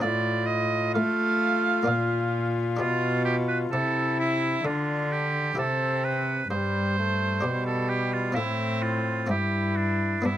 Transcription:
0.00 cello A2, harpsichord A2 C4 D#4 F4, oboe D5
0.05 trumpet F4
0.47 oboe D#5
0.95 cello A3, harpsichord A3, oboe F5
1.83 harpsichord A#3 D4 F4
1.88 harpsichord A#2, cello A#2
2.77 harpsichord B2 D4 G4, cello B2, oboe F4
3.25 oboe G4
3.48 oboe B4
3.72 cello C3, harpsichord C3, trumpet E4, oboe A4
4.20 oboe E4
4.65 harpsichord D3, cello D3, trumpet D4, oboe F4
5.12 oboe G4
5.55 harpsichord C3 E4 G4, cello C3, trumpet C4, oboe A4
6.05 oboe B4
6.50 cello G2, harpsichord G2, trumpet G3, oboe C5
6.98 trumpet A3
7.41 cello B2, harpsichord B2 D4 G4
7.47 trumpet G3
7.66 oboe A4
7.90 oboe G4
8.13 oboe F4
8.33 cello A2, harpsichord C4 F4, oboe E4
8.37 harpsichord A2, trumpet C4
8.83 oboe F4
9.27 harpsichord G2 C4 E4, cello G2
9.31 trumpet E4, oboe G4
9.77 oboe D4
10.22 cello G2, harpsichord G2 B3 D4, oboe E4
10.27 trumpet B3

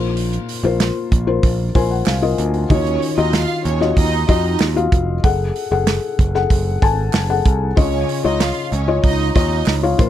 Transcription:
Already playing: picked electric bass A#1, felt piano A#2 F4 A#4 C5
0.00 open hi-hat
0.17 hi-hat pedal, open hi-hat
0.33 hi-hat pedal
0.49 hi-hat pedal, open hi-hat
0.63 picked electric bass A#1, felt piano F4 A#4 C5
0.80 snare, clap, hi-hat pedal, open hi-hat
1.12 picked electric bass A#1, kick, hi-hat pedal, open hi-hat
1.27 felt piano F4 A#4 C5
1.43 picked electric bass A#1, kick, hi-hat pedal, open hi-hat
1.75 picked electric bass A#1, felt piano F4 A#4 C5 G#5, kick, hi-hat pedal, open hi-hat
1.91 felt piano F#5
2.06 picked electric bass C2, felt piano F5, snare, clap, hi-hat pedal, open hi-hat
2.22 felt piano F4 A#4 D#5
2.38 picked electric bass D2, hi-hat pedal, open hi-hat
2.54 open hi-hat
2.70 picked electric bass D#2, felt piano D#3 F4 F#4 D#5, violin section C#4 C#5, kick, hi-hat pedal, open hi-hat
2.86 hi-hat pedal
3.02 hi-hat pedal, open hi-hat
3.18 picked electric bass D#2, violin section D#4 D#5, felt piano F4 F#4 D#5
3.33 violin section F4 F5, snare, clap, hi-hat pedal, open hi-hat
3.65 picked electric bass D#2, violin section C#4 C#5, hi-hat pedal, open hi-hat
3.81 felt piano F4 F#4 D#5, snare
3.97 picked electric bass D#2, violin section D#4 D#5, kick, hi-hat pedal, open hi-hat
4.28 picked electric bass F2, violin section D#4 D#5, felt piano F4 F#4 D#5, kick, hi-hat pedal, open hi-hat
4.45 open hi-hat
4.60 picked electric bass D#2, snare, clap, hi-hat pedal, open hi-hat
4.76 felt piano F4 F#4 F5, hi-hat pedal
4.92 picked electric bass F1, kick, hi-hat pedal, open hi-hat
5.23 picked electric bass F#1, felt piano G#4 A4 F#5, kick, hi-hat pedal, open hi-hat
5.56 hi-hat pedal, open hi-hat
5.71 picked electric bass F#1, felt piano G#4 A4 F#5
5.87 snare, clap, hi-hat pedal, open hi-hat
6.19 picked electric bass F#1, kick, hi-hat pedal, open hi-hat
6.35 felt piano G#4 A4 F#5, snare
6.50 picked electric bass F#1, kick, hi-hat pedal, open hi-hat
6.82 picked electric bass G#1, felt piano A4 G#5 A5, kick, hi-hat pedal, open hi-hat
7.13 picked electric bass F#1, snare, clap, hi-hat pedal, open hi-hat
7.30 felt piano G#4 A4 F#5
7.45 picked electric bass C2, kick, hi-hat pedal, open hi-hat
7.77 picked electric bass C#2, felt piano C#3 F4 C#5 D#5, violin section C#4 C#5, kick, hi-hat pedal, open hi-hat
8.09 hi-hat pedal, open hi-hat
8.24 picked electric bass C#2, violin section D#4 D#5, felt piano F4 C#5 D#5
8.40 violin section F4 F5, snare, clap, hi-hat pedal, open hi-hat
8.72 picked electric bass C#2, violin section C#4 C#5, hi-hat pedal, open hi-hat
8.88 felt piano F4 C#5 D#5
9.04 picked electric bass C#2, violin section D#4 D#5, kick, hi-hat pedal, open hi-hat
9.35 picked electric bass D#2, violin section D#4 D#5, felt piano F4 C#5 D#5, kick, hi-hat pedal, open hi-hat
9.66 picked electric bass C#2, snare, clap, hi-hat pedal, open hi-hat
9.83 felt piano F4 C#5 F5
9.99 picked electric bass A#1, felt piano A#2 F4 A#4 C5, kick, hi-hat pedal, open hi-hat

